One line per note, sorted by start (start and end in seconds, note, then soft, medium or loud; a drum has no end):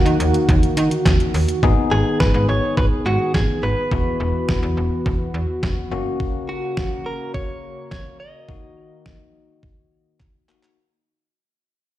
0.00 1.61 D#3 medium
0.00 1.59 A#3 medium
0.00 1.59 D#4 medium
0.00 1.59 F#4 medium
0.00 1.59 A#4 medium
0.00 1.02 F#5 loud
0.06 0.18 D#3 loud
0.06 closed hi-hat medium
0.20 0.33 D#2 loud
0.20 closed hi-hat medium
0.34 closed hi-hat medium
0.49 0.61 D#2 loud
0.49 kick loud
0.49 closed hi-hat medium
0.63 closed hi-hat medium
0.77 0.90 D#3 loud
0.77 closed hi-hat medium
0.91 closed hi-hat medium
1.06 1.18 D#2 loud
1.06 kick loud
1.06 snare loud
1.06 clap loud
1.06 closed hi-hat medium
1.20 closed hi-hat soft
1.34 1.47 D#2 medium
1.34 open hi-hat medium
1.49 closed hi-hat medium
1.63 1.75 G#1 loud
1.63 3.89 D#3 medium
1.63 3.87 B3 medium
1.63 5.88 B3 medium
1.63 3.88 D#4 medium
1.63 3.88 G#4 medium
1.63 3.89 G#4 medium
1.63 kick loud
1.91 2.04 G#1 loud
1.91 2.20 G#4 medium
2.20 2.33 G#1 loud
2.20 2.47 B4 loud
2.20 kick loud
2.20 snare loud
2.34 2.47 G#2 loud
2.49 2.61 G#1 medium
2.49 2.77 C#5 loud
2.77 2.90 G#1 loud
2.77 2.85 B4 loud
2.77 kick loud
3.06 3.18 G#2 loud
3.06 3.33 F#4 medium
3.34 3.47 G#1 loud
3.34 3.64 G#4 medium
3.34 kick loud
3.34 snare loud
3.63 3.75 G#1 medium
3.63 5.88 B4 medium
3.92 4.04 E1 loud
3.92 5.90 E3 medium
3.92 5.88 B3 medium
3.92 5.88 E4 medium
3.92 10.73 F#4 medium
3.92 5.88 F#4 medium
3.92 kick loud
4.20 4.33 E1 loud
4.49 4.61 E1 loud
4.49 kick loud
4.49 snare loud
4.63 4.75 E2 loud
4.77 4.90 E1 loud
5.06 5.18 E1 loud
5.06 kick loud
5.34 5.47 E2 loud
5.63 5.75 E1 loud
5.63 kick loud
5.63 snare loud
5.91 6.04 F#1 loud
5.91 8.46 C#3 medium
5.91 10.73 A#3 medium
5.91 8.16 A#3 medium
5.91 8.16 C#4 medium
5.91 8.16 F#4 medium
6.20 kick medium
6.49 7.08 F#4 medium
6.77 kick loud
6.77 snare loud
7.06 7.34 A#4 medium
7.34 7.90 C#5 loud
7.34 kick loud
7.91 8.19 C#5 loud
7.91 kick loud
7.91 snare loud
8.20 10.16 D#5 medium
8.49 10.75 D#3 medium
8.49 10.45 A#3 medium
8.49 10.45 D#4 medium
8.49 10.45 F#4 medium
8.49 kick loud
9.06 kick loud
9.06 snare loud
9.63 kick loud
10.20 kick loud
10.20 clap soft
10.49 10.77 A#3 medium
10.49 10.77 D#4 soft
10.49 10.77 F#4 medium
10.49 clap medium
10.63 clap medium